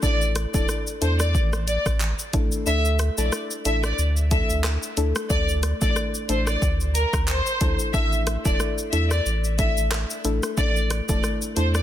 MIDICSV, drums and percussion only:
0, 0, Header, 1, 2, 480
1, 0, Start_track
1, 0, Tempo, 659341
1, 20, Time_signature, 4, 2, 24, 8
1, 8609, End_track
2, 0, Start_track
2, 0, Title_t, "Drums"
2, 20, Note_on_c, 9, 36, 107
2, 20, Note_on_c, 9, 82, 77
2, 93, Note_off_c, 9, 36, 0
2, 93, Note_off_c, 9, 82, 0
2, 156, Note_on_c, 9, 82, 54
2, 229, Note_off_c, 9, 82, 0
2, 259, Note_on_c, 9, 42, 79
2, 259, Note_on_c, 9, 82, 59
2, 260, Note_on_c, 9, 37, 86
2, 331, Note_off_c, 9, 42, 0
2, 331, Note_off_c, 9, 82, 0
2, 333, Note_off_c, 9, 37, 0
2, 395, Note_on_c, 9, 36, 103
2, 395, Note_on_c, 9, 82, 90
2, 467, Note_off_c, 9, 82, 0
2, 468, Note_off_c, 9, 36, 0
2, 500, Note_on_c, 9, 82, 82
2, 501, Note_on_c, 9, 37, 93
2, 573, Note_off_c, 9, 37, 0
2, 573, Note_off_c, 9, 82, 0
2, 633, Note_on_c, 9, 82, 60
2, 706, Note_off_c, 9, 82, 0
2, 740, Note_on_c, 9, 42, 70
2, 740, Note_on_c, 9, 82, 53
2, 813, Note_off_c, 9, 42, 0
2, 813, Note_off_c, 9, 82, 0
2, 872, Note_on_c, 9, 82, 79
2, 873, Note_on_c, 9, 37, 91
2, 945, Note_off_c, 9, 37, 0
2, 945, Note_off_c, 9, 82, 0
2, 980, Note_on_c, 9, 36, 90
2, 982, Note_on_c, 9, 82, 74
2, 1053, Note_off_c, 9, 36, 0
2, 1054, Note_off_c, 9, 82, 0
2, 1113, Note_on_c, 9, 82, 49
2, 1115, Note_on_c, 9, 37, 88
2, 1186, Note_off_c, 9, 82, 0
2, 1187, Note_off_c, 9, 37, 0
2, 1220, Note_on_c, 9, 42, 73
2, 1220, Note_on_c, 9, 82, 53
2, 1293, Note_off_c, 9, 42, 0
2, 1293, Note_off_c, 9, 82, 0
2, 1354, Note_on_c, 9, 36, 89
2, 1355, Note_on_c, 9, 82, 80
2, 1356, Note_on_c, 9, 37, 94
2, 1426, Note_off_c, 9, 36, 0
2, 1427, Note_off_c, 9, 82, 0
2, 1429, Note_off_c, 9, 37, 0
2, 1459, Note_on_c, 9, 39, 100
2, 1460, Note_on_c, 9, 82, 77
2, 1532, Note_off_c, 9, 39, 0
2, 1533, Note_off_c, 9, 82, 0
2, 1595, Note_on_c, 9, 82, 66
2, 1668, Note_off_c, 9, 82, 0
2, 1699, Note_on_c, 9, 42, 73
2, 1699, Note_on_c, 9, 82, 51
2, 1702, Note_on_c, 9, 36, 98
2, 1772, Note_off_c, 9, 42, 0
2, 1772, Note_off_c, 9, 82, 0
2, 1774, Note_off_c, 9, 36, 0
2, 1834, Note_on_c, 9, 82, 72
2, 1907, Note_off_c, 9, 82, 0
2, 1940, Note_on_c, 9, 82, 76
2, 2013, Note_off_c, 9, 82, 0
2, 2076, Note_on_c, 9, 82, 52
2, 2148, Note_off_c, 9, 82, 0
2, 2178, Note_on_c, 9, 42, 78
2, 2178, Note_on_c, 9, 82, 59
2, 2180, Note_on_c, 9, 37, 89
2, 2251, Note_off_c, 9, 42, 0
2, 2251, Note_off_c, 9, 82, 0
2, 2253, Note_off_c, 9, 37, 0
2, 2314, Note_on_c, 9, 82, 93
2, 2387, Note_off_c, 9, 82, 0
2, 2420, Note_on_c, 9, 37, 94
2, 2420, Note_on_c, 9, 82, 84
2, 2493, Note_off_c, 9, 37, 0
2, 2493, Note_off_c, 9, 82, 0
2, 2553, Note_on_c, 9, 82, 61
2, 2626, Note_off_c, 9, 82, 0
2, 2660, Note_on_c, 9, 42, 71
2, 2660, Note_on_c, 9, 82, 51
2, 2733, Note_off_c, 9, 42, 0
2, 2733, Note_off_c, 9, 82, 0
2, 2792, Note_on_c, 9, 82, 77
2, 2793, Note_on_c, 9, 37, 95
2, 2865, Note_off_c, 9, 82, 0
2, 2866, Note_off_c, 9, 37, 0
2, 2902, Note_on_c, 9, 82, 72
2, 2974, Note_off_c, 9, 82, 0
2, 3033, Note_on_c, 9, 82, 47
2, 3106, Note_off_c, 9, 82, 0
2, 3139, Note_on_c, 9, 42, 73
2, 3139, Note_on_c, 9, 82, 50
2, 3140, Note_on_c, 9, 36, 96
2, 3212, Note_off_c, 9, 42, 0
2, 3212, Note_off_c, 9, 82, 0
2, 3213, Note_off_c, 9, 36, 0
2, 3275, Note_on_c, 9, 82, 83
2, 3347, Note_off_c, 9, 82, 0
2, 3379, Note_on_c, 9, 37, 97
2, 3379, Note_on_c, 9, 39, 97
2, 3380, Note_on_c, 9, 82, 76
2, 3451, Note_off_c, 9, 37, 0
2, 3451, Note_off_c, 9, 39, 0
2, 3452, Note_off_c, 9, 82, 0
2, 3514, Note_on_c, 9, 82, 65
2, 3587, Note_off_c, 9, 82, 0
2, 3619, Note_on_c, 9, 42, 71
2, 3619, Note_on_c, 9, 82, 52
2, 3692, Note_off_c, 9, 42, 0
2, 3692, Note_off_c, 9, 82, 0
2, 3753, Note_on_c, 9, 82, 68
2, 3755, Note_on_c, 9, 37, 96
2, 3826, Note_off_c, 9, 82, 0
2, 3828, Note_off_c, 9, 37, 0
2, 3859, Note_on_c, 9, 82, 80
2, 3860, Note_on_c, 9, 36, 109
2, 3932, Note_off_c, 9, 82, 0
2, 3933, Note_off_c, 9, 36, 0
2, 3995, Note_on_c, 9, 82, 51
2, 4068, Note_off_c, 9, 82, 0
2, 4098, Note_on_c, 9, 42, 84
2, 4098, Note_on_c, 9, 82, 59
2, 4100, Note_on_c, 9, 37, 86
2, 4171, Note_off_c, 9, 42, 0
2, 4171, Note_off_c, 9, 82, 0
2, 4173, Note_off_c, 9, 37, 0
2, 4234, Note_on_c, 9, 82, 90
2, 4235, Note_on_c, 9, 36, 106
2, 4306, Note_off_c, 9, 82, 0
2, 4308, Note_off_c, 9, 36, 0
2, 4340, Note_on_c, 9, 37, 94
2, 4340, Note_on_c, 9, 82, 81
2, 4413, Note_off_c, 9, 37, 0
2, 4413, Note_off_c, 9, 82, 0
2, 4473, Note_on_c, 9, 82, 59
2, 4546, Note_off_c, 9, 82, 0
2, 4579, Note_on_c, 9, 42, 73
2, 4579, Note_on_c, 9, 82, 50
2, 4652, Note_off_c, 9, 42, 0
2, 4652, Note_off_c, 9, 82, 0
2, 4711, Note_on_c, 9, 82, 77
2, 4712, Note_on_c, 9, 37, 93
2, 4784, Note_off_c, 9, 82, 0
2, 4785, Note_off_c, 9, 37, 0
2, 4820, Note_on_c, 9, 36, 93
2, 4822, Note_on_c, 9, 82, 78
2, 4893, Note_off_c, 9, 36, 0
2, 4894, Note_off_c, 9, 82, 0
2, 4954, Note_on_c, 9, 82, 47
2, 5026, Note_off_c, 9, 82, 0
2, 5060, Note_on_c, 9, 42, 75
2, 5060, Note_on_c, 9, 82, 51
2, 5132, Note_off_c, 9, 42, 0
2, 5132, Note_off_c, 9, 82, 0
2, 5193, Note_on_c, 9, 36, 95
2, 5195, Note_on_c, 9, 82, 80
2, 5196, Note_on_c, 9, 37, 101
2, 5266, Note_off_c, 9, 36, 0
2, 5267, Note_off_c, 9, 82, 0
2, 5269, Note_off_c, 9, 37, 0
2, 5298, Note_on_c, 9, 39, 100
2, 5299, Note_on_c, 9, 82, 75
2, 5371, Note_off_c, 9, 39, 0
2, 5372, Note_off_c, 9, 82, 0
2, 5434, Note_on_c, 9, 82, 62
2, 5507, Note_off_c, 9, 82, 0
2, 5539, Note_on_c, 9, 42, 74
2, 5539, Note_on_c, 9, 82, 52
2, 5541, Note_on_c, 9, 36, 97
2, 5611, Note_off_c, 9, 42, 0
2, 5611, Note_off_c, 9, 82, 0
2, 5614, Note_off_c, 9, 36, 0
2, 5673, Note_on_c, 9, 82, 75
2, 5746, Note_off_c, 9, 82, 0
2, 5779, Note_on_c, 9, 36, 108
2, 5779, Note_on_c, 9, 82, 79
2, 5852, Note_off_c, 9, 36, 0
2, 5852, Note_off_c, 9, 82, 0
2, 5915, Note_on_c, 9, 82, 53
2, 5988, Note_off_c, 9, 82, 0
2, 6019, Note_on_c, 9, 42, 81
2, 6019, Note_on_c, 9, 82, 58
2, 6021, Note_on_c, 9, 37, 86
2, 6092, Note_off_c, 9, 42, 0
2, 6092, Note_off_c, 9, 82, 0
2, 6093, Note_off_c, 9, 37, 0
2, 6154, Note_on_c, 9, 82, 85
2, 6155, Note_on_c, 9, 36, 109
2, 6227, Note_off_c, 9, 82, 0
2, 6228, Note_off_c, 9, 36, 0
2, 6260, Note_on_c, 9, 37, 91
2, 6260, Note_on_c, 9, 82, 84
2, 6333, Note_off_c, 9, 37, 0
2, 6333, Note_off_c, 9, 82, 0
2, 6393, Note_on_c, 9, 82, 59
2, 6466, Note_off_c, 9, 82, 0
2, 6500, Note_on_c, 9, 42, 69
2, 6500, Note_on_c, 9, 82, 49
2, 6572, Note_off_c, 9, 42, 0
2, 6572, Note_off_c, 9, 82, 0
2, 6632, Note_on_c, 9, 82, 76
2, 6633, Note_on_c, 9, 37, 92
2, 6705, Note_off_c, 9, 37, 0
2, 6705, Note_off_c, 9, 82, 0
2, 6741, Note_on_c, 9, 82, 72
2, 6814, Note_off_c, 9, 82, 0
2, 6874, Note_on_c, 9, 82, 46
2, 6946, Note_off_c, 9, 82, 0
2, 6979, Note_on_c, 9, 42, 73
2, 6979, Note_on_c, 9, 82, 54
2, 6980, Note_on_c, 9, 36, 94
2, 7052, Note_off_c, 9, 42, 0
2, 7052, Note_off_c, 9, 82, 0
2, 7053, Note_off_c, 9, 36, 0
2, 7115, Note_on_c, 9, 82, 84
2, 7188, Note_off_c, 9, 82, 0
2, 7218, Note_on_c, 9, 37, 97
2, 7218, Note_on_c, 9, 39, 99
2, 7219, Note_on_c, 9, 82, 75
2, 7291, Note_off_c, 9, 37, 0
2, 7291, Note_off_c, 9, 39, 0
2, 7292, Note_off_c, 9, 82, 0
2, 7354, Note_on_c, 9, 82, 64
2, 7427, Note_off_c, 9, 82, 0
2, 7459, Note_on_c, 9, 42, 75
2, 7459, Note_on_c, 9, 82, 55
2, 7532, Note_off_c, 9, 42, 0
2, 7532, Note_off_c, 9, 82, 0
2, 7593, Note_on_c, 9, 82, 76
2, 7595, Note_on_c, 9, 37, 91
2, 7666, Note_off_c, 9, 82, 0
2, 7668, Note_off_c, 9, 37, 0
2, 7699, Note_on_c, 9, 36, 113
2, 7699, Note_on_c, 9, 82, 77
2, 7772, Note_off_c, 9, 36, 0
2, 7772, Note_off_c, 9, 82, 0
2, 7836, Note_on_c, 9, 82, 53
2, 7908, Note_off_c, 9, 82, 0
2, 7939, Note_on_c, 9, 42, 82
2, 7939, Note_on_c, 9, 82, 61
2, 7940, Note_on_c, 9, 37, 89
2, 8011, Note_off_c, 9, 42, 0
2, 8011, Note_off_c, 9, 82, 0
2, 8013, Note_off_c, 9, 37, 0
2, 8073, Note_on_c, 9, 82, 92
2, 8075, Note_on_c, 9, 36, 108
2, 8146, Note_off_c, 9, 82, 0
2, 8148, Note_off_c, 9, 36, 0
2, 8180, Note_on_c, 9, 37, 92
2, 8180, Note_on_c, 9, 82, 82
2, 8253, Note_off_c, 9, 37, 0
2, 8253, Note_off_c, 9, 82, 0
2, 8313, Note_on_c, 9, 82, 60
2, 8385, Note_off_c, 9, 82, 0
2, 8420, Note_on_c, 9, 42, 72
2, 8420, Note_on_c, 9, 82, 51
2, 8492, Note_off_c, 9, 42, 0
2, 8492, Note_off_c, 9, 82, 0
2, 8552, Note_on_c, 9, 37, 89
2, 8552, Note_on_c, 9, 82, 75
2, 8609, Note_off_c, 9, 37, 0
2, 8609, Note_off_c, 9, 82, 0
2, 8609, End_track
0, 0, End_of_file